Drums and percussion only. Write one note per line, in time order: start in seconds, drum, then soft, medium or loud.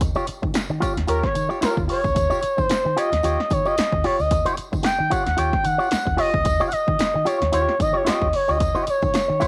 0.01 kick loud
0.01 closed hi-hat loud
0.01 tambourine medium
0.15 tambourine soft
0.27 closed hi-hat medium
0.27 tambourine soft
0.43 kick medium
0.54 snare loud
0.54 closed hi-hat loud
0.54 tambourine medium
0.82 kick medium
0.82 closed hi-hat medium
0.82 tambourine medium
0.97 snare soft
0.97 closed hi-hat medium
1.08 closed hi-hat loud
1.08 tambourine medium
1.23 kick loud
1.23 snare soft
1.35 closed hi-hat medium
1.35 tambourine medium
1.51 tambourine soft
1.62 snare loud
1.62 closed hi-hat loud
1.62 tambourine loud
1.77 kick medium
1.89 open hi-hat medium
2.04 kick medium
2.04 tambourine soft
2.16 kick loud
2.16 closed hi-hat medium
2.16 tambourine medium
2.30 tambourine medium
2.42 closed hi-hat medium
2.42 tambourine medium
2.58 kick medium
2.58 tambourine soft
2.69 snare loud
2.69 closed hi-hat loud
2.69 tambourine medium
2.97 closed hi-hat medium
2.97 tambourine medium
3.12 snare soft
3.12 closed hi-hat medium
3.12 tambourine soft
3.23 closed hi-hat loud
3.23 tambourine medium
3.40 snare soft
3.50 kick loud
3.50 closed hi-hat medium
3.50 tambourine medium
3.65 tambourine soft
3.78 snare loud
3.78 closed hi-hat loud
3.78 tambourine medium
3.92 kick medium
4.04 open hi-hat medium
4.19 tambourine soft
4.31 kick loud
4.31 closed hi-hat loud
4.31 tambourine medium
4.46 closed hi-hat medium
4.46 tambourine medium
4.57 closed hi-hat medium
4.57 tambourine medium
4.73 kick medium
4.73 tambourine soft
4.83 snare loud
4.83 closed hi-hat loud
4.83 tambourine medium
5.11 kick medium
5.11 closed hi-hat medium
5.11 tambourine medium
5.27 snare soft
5.27 closed hi-hat medium
5.27 tambourine soft
5.38 closed hi-hat loud
5.38 tambourine soft
5.53 kick medium
5.53 snare soft
5.65 closed hi-hat medium
5.65 tambourine medium
5.80 tambourine soft
5.91 snare loud
5.91 closed hi-hat medium
5.91 tambourine loud
6.07 kick medium
6.18 open hi-hat medium
6.34 kick loud
6.45 kick loud
6.45 closed hi-hat loud
6.45 tambourine medium
6.60 tambourine soft
6.71 closed hi-hat medium
6.71 tambourine medium
6.88 kick medium
6.99 snare loud
6.99 closed hi-hat loud
6.99 tambourine medium
7.26 closed hi-hat medium
7.26 tambourine medium
7.42 snare soft
7.42 closed hi-hat medium
7.52 closed hi-hat medium
7.52 tambourine medium
7.69 snare soft
7.80 kick loud
7.80 closed hi-hat medium
7.80 tambourine medium
8.07 snare loud
8.07 closed hi-hat loud
8.07 tambourine medium
8.22 kick medium
8.33 open hi-hat medium
8.48 tambourine soft
8.60 kick loud
8.60 closed hi-hat loud
8.60 tambourine medium
8.75 tambourine soft
8.87 closed hi-hat medium
8.87 tambourine medium
9.02 kick loud
9.02 tambourine soft
9.14 snare loud
9.14 closed hi-hat loud
9.14 tambourine medium
9.41 kick loud
9.41 closed hi-hat medium
9.41 tambourine medium